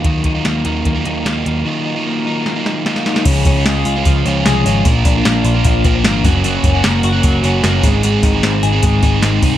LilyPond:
<<
  \new Staff \with { instrumentName = "Clean electric guitar" } { \time 4/4 \key ees \dorian \tempo 4 = 151 <ees bes ees' f'>8 ees'8 bes8 ees'8 bes8 ees'8 f'8 ees'8 | ees8 ees'8 bes8 ees'8 bes8 ees'8 f'8 ees'8 | des8 des'8 aes8 f'8 f8 des'8 aes8 des'8 | bes,8 d'8 bes8 f'8 f8 c'16 d'16 bes8 ges,8 |
ges,8 des'8 bes8 ges'8 ges8 des'8 bes8 aes,8 | aes,8 ees'8 c'8 aes'8 aes8 ees'8 c'8 ees'8 | }
  \new Staff \with { instrumentName = "Overdriven electric guitar" } { \time 4/4 \key ees \dorian <ees ges bes ees' f'>8. <ees ges bes ees' f'>8. <ges bes ees' f'>8. <ees ges bes ees' f'>8. <ges bes ees' f'>4 | <ees ges bes ees' f'>8. <ees ges bes ees' f'>8. <ges bes ees' f'>8. <ees ges bes ees' f'>8. <ges bes ees' f'>4 | <des f aes des' f'>8. <aes des' f'>4 <aes des' f'>8. <f aes des' f'>8 <f aes des' f'>8 <f aes des' f'>8 | <bes, f bes d' f'>8. <bes d' f'>4 <bes d' f'>8. <f bes d' f'>8 <f bes d' f'>8 <ges bes des' ges'>8 |
<ges, des ges bes des' ges'>8. <ges bes des' ges'>4 <ges bes des' ges'>8. <ges bes des' ges'>8 <ges bes des' ges'>8 <aes c' ees' aes'>8 | <aes, ees aes c' ees' aes'>8. <aes c' ees' aes'>4 <aes c' ees' aes'>8. <aes c' ees' aes'>8 <aes c' ees' aes'>8 <aes c' ees' aes'>8 | }
  \new Staff \with { instrumentName = "Picked electric bass" } { \clef bass \time 4/4 \key ees \dorian ees,8 ees,8 ees,8 ees,8 ees,8 ees,8 ees,8 ees,8 | r1 | des,8 des,8 des,8 des,8 des,8 des,8 c,8 aes,,8 | bes,,8 bes,,8 bes,,8 bes,,8 bes,,8 bes,,8 aes,,8 ges,,8~ |
ges,,8 ges,,8 ges,,8 ges,,8 ges,,8 ges,,8 ges,,8 aes,,8~ | aes,,8 aes,,8 aes,,8 aes,,8 aes,,8 aes,,8 aes,,8 c,8 | }
  \new DrumStaff \with { instrumentName = "Drums" } \drummode { \time 4/4 <hh bd>8 <hh bd>8 <hh sn>8 hh8 <hh bd>8 hh8 <hh sn>8 hh8 | r4 r4 sn8 sn8 sn16 sn16 sn16 sn16 | <cymc hho bd>8 <hho bd>8 <hho sn>8 hho8 <hho bd>8 hho8 <hho sn>8 hho8 | <hho bd>8 <hho bd>8 <hho sn>8 hho8 <hho bd>8 <hho bd>8 <hho sn>8 <hho bd>8 |
hho8 <hho bd>8 <hho sn>8 hho8 <hho bd>8 hho8 <hho sn>8 <hho bd>8 | hho8 <hho bd sn>8 <hho sn>8 hho8 <hho bd>8 <hho bd>8 <hho sn>8 <hho bd>8 | }
>>